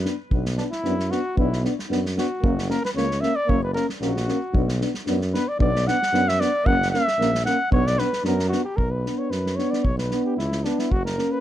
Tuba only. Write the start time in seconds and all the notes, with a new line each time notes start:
0.32 B1
0.84 F#2
1.36 B1
1.90 F#2
2.43 F#1
2.95 C#2
3.48 F#1
4.01 A#1
4.53 B1
5.07 F#2
5.59 B1
6.13 F#2
6.65 F#1
7.18 A#1
7.72 B1
8.24 F#2
8.77 B1
9.30 F#2
9.84 B1
10.38 C#2
10.91 F#1